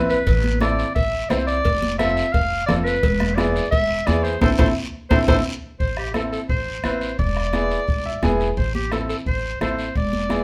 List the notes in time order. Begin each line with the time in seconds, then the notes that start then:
Already playing: A1 C4 E4 B4
0.09 B4, short guiro
0.27 A1, bombo low, cowbell, long guiro
0.44 high conga
0.60 C4 E4 A4 D5, bombo rim, high conga, short guiro
0.79 short guiro
0.95 A1 E5, bombo low, cowbell, long guiro
1.29 C2 C4 E4 C5, bombo rim, high conga, low timbale, short guiro
1.47 D5, short guiro
1.65 F1, bombo low, cowbell, long guiro
1.82 high conga
1.98 C4 F4 A4 E5, bombo rim, high conga, short guiro
2.17 short guiro
2.32 F1 F5, bombo low, cowbell, long guiro
2.66 F1 C4 F4 A4 D5, bombo rim, high conga, low conga, short guiro
2.84 B4, short guiro
3.03 E1, bombo low, cowbell, long guiro
3.20 bombo rim, high conga
3.35 B3 E4 G#4 D5, bombo rim, high conga, short guiro
3.56 short guiro
3.71 E1 E5, bombo low, cowbell, long guiro
4.06 E2 B3 E4 G#4 D5, bombo rim, high conga, short guiro
4.24 C5, short guiro
4.41 A1 C4 E4 A4 C5, bombo low, high conga, high timbale, long guiro
4.58 A1 C4 E4 A4 C5, bombo low, high conga, high timbale, long guiro
5.10 A1 C4 E4 A4 C5, bombo low, high conga, high timbale, long guiro
5.28 A1 C4 E4 A4 C5, bombo low, high conga, high timbale, long guiro
5.80 A1 C5, bombo low, long guiro
5.97 G4, bombo rim
6.14 C4 E4 A4, bombo rim, high conga, short guiro
6.32 A4, short guiro
6.49 A1 C5, bombo low, long guiro
6.84 A1 C4 E4 B4 C5, bombo rim, high conga, short guiro
7.01 short guiro
7.19 E1 D5, bombo low, long guiro
7.37 bombo rim
7.53 B3 E4 G#4, bombo rim, high conga, short guiro
7.70 short guiro
7.88 E1, bombo low, long guiro
8.06 E5
8.23 E1 B3 E4 G#4 G#5, bombo low, bombo rim, high conga, short guiro
8.40 short guiro
8.57 A1 C5, bombo low, long guiro
8.75 G4, high conga
8.92 C4 E4 A4, bombo rim, high conga, short guiro
9.09 A4, short guiro
9.26 A1 C5, bombo low, long guiro
9.61 A1 C4 E4 A4 C5, bombo rim, high conga, short guiro
9.79 short guiro
9.95 E1 D5, bombo low, long guiro
10.13 high conga
10.29 B3 E4 G#4, bombo rim, high conga, short guiro